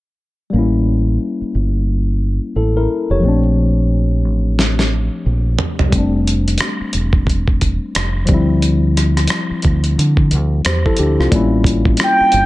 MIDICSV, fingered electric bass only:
0, 0, Header, 1, 3, 480
1, 0, Start_track
1, 0, Tempo, 674157
1, 378, Time_signature, 4, 2, 24, 8
1, 8869, End_track
2, 0, Start_track
2, 0, Title_t, "Fingered electric bass"
2, 0, Program_c, 0, 33
2, 381, Note_on_c, 0, 33, 75
2, 831, Note_off_c, 0, 33, 0
2, 1102, Note_on_c, 0, 31, 68
2, 1696, Note_off_c, 0, 31, 0
2, 1821, Note_on_c, 0, 33, 65
2, 2036, Note_off_c, 0, 33, 0
2, 2207, Note_on_c, 0, 29, 67
2, 2291, Note_off_c, 0, 29, 0
2, 2302, Note_on_c, 0, 34, 74
2, 3023, Note_off_c, 0, 34, 0
2, 3023, Note_on_c, 0, 33, 80
2, 3616, Note_off_c, 0, 33, 0
2, 3745, Note_on_c, 0, 34, 79
2, 3958, Note_off_c, 0, 34, 0
2, 4128, Note_on_c, 0, 36, 85
2, 4212, Note_off_c, 0, 36, 0
2, 4221, Note_on_c, 0, 29, 99
2, 4671, Note_off_c, 0, 29, 0
2, 4942, Note_on_c, 0, 28, 72
2, 5536, Note_off_c, 0, 28, 0
2, 5664, Note_on_c, 0, 29, 70
2, 5878, Note_off_c, 0, 29, 0
2, 5905, Note_on_c, 0, 38, 78
2, 6593, Note_off_c, 0, 38, 0
2, 6871, Note_on_c, 0, 38, 76
2, 7082, Note_off_c, 0, 38, 0
2, 7106, Note_on_c, 0, 50, 83
2, 7346, Note_on_c, 0, 38, 70
2, 7357, Note_off_c, 0, 50, 0
2, 7559, Note_off_c, 0, 38, 0
2, 7585, Note_on_c, 0, 40, 80
2, 7712, Note_off_c, 0, 40, 0
2, 7825, Note_on_c, 0, 38, 71
2, 7952, Note_off_c, 0, 38, 0
2, 7969, Note_on_c, 0, 36, 70
2, 8052, Note_off_c, 0, 36, 0
2, 8061, Note_on_c, 0, 33, 83
2, 8511, Note_off_c, 0, 33, 0
2, 8784, Note_on_c, 0, 31, 84
2, 8869, Note_off_c, 0, 31, 0
2, 8869, End_track
3, 0, Start_track
3, 0, Title_t, "Muted fingered electric bass strokes"
3, 1006, Note_on_c, 9, 29, 39
3, 1077, Note_off_c, 9, 29, 0
3, 4848, Note_on_c, 9, 29, 39
3, 4919, Note_off_c, 9, 29, 0
3, 6770, Note_on_c, 9, 29, 41
3, 6841, Note_off_c, 9, 29, 0
3, 8690, Note_on_c, 9, 29, 40
3, 8761, Note_off_c, 9, 29, 0
3, 8869, End_track
0, 0, End_of_file